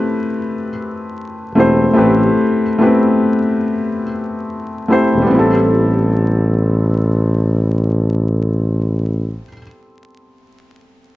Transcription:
0.00 1.55 A3 medium
0.00 1.56 C4 medium
0.00 1.57 E4 medium
0.00 1.58 G4 medium
0.00 1.98 B4 loud
1.55 1.90 E1 medium
1.55 1.88 A3 medium
1.55 1.89 C4 medium
1.55 1.89 E4 medium
1.55 1.90 G4 medium
1.60 1.91 C5 medium
1.93 2.31 A1 medium
1.93 2.61 A3 medium
1.93 2.62 C4 medium
1.93 2.62 E4 medium
1.93 2.63 G4 medium
1.98 2.63 B4 loud
2.79 4.03 A3 medium
2.79 2.88 B3 medium
2.79 4.04 E4 medium
2.79 4.04 G4 medium
2.83 4.06 C4 medium
2.83 4.05 B4 medium
4.88 5.21 A3 medium
4.88 5.22 C4 medium
4.88 5.23 E4 medium
4.88 5.23 G4 medium
4.92 5.24 C5 medium
5.14 5.27 E1 medium
5.22 9.44 G3 medium
5.26 9.48 B3 medium
5.30 9.39 A1 loud
5.30 9.53 C4 medium
5.35 9.57 E4 medium
5.39 9.61 A4 medium

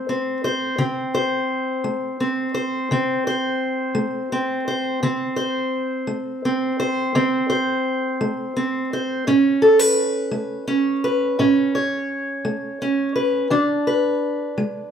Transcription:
0.00 0.37 A3 medium
0.00 0.44 C5 medium
0.09 0.78 C4 medium
0.44 0.81 C5 medium
0.78 1.43 D3 medium
0.78 2.20 C4 medium
1.14 2.54 C5 medium
1.84 2.48 A3 medium
2.20 2.91 C4 medium
2.54 3.26 C5 medium
2.91 3.55 D3 medium
2.91 4.31 C4 medium
3.27 4.66 C5 medium
3.95 4.59 A3 medium
4.32 5.02 C4 medium
4.68 4.99 C5 medium
5.03 5.66 D3 medium
5.03 6.44 C4 medium
5.36 6.78 C5 medium
6.07 6.72 A3 medium
6.45 7.14 C4 medium
6.80 7.48 C5 medium
7.15 7.78 D3 medium
7.15 8.55 C4 medium
7.50 8.91 C5 medium
8.21 8.84 A3 medium
8.57 9.27 C4 medium
8.93 9.23 C5 medium
9.27 9.90 A2 medium
9.27 10.66 C#4 medium
9.62 9.79 A4 medium
9.79 11.03 B4 soft
10.31 10.96 A3 medium
10.67 11.38 C#4 medium
11.04 11.74 B4 medium
11.39 12.02 A2 medium
11.39 12.80 C#4 medium
11.75 13.15 C#5 medium
12.45 13.08 A3 medium
12.82 13.47 C#4 medium
13.16 13.47 B4 medium
13.50 14.14 E3 medium
13.50 14.91 D4 medium
13.87 14.91 B4 medium
14.58 14.91 G#3 medium

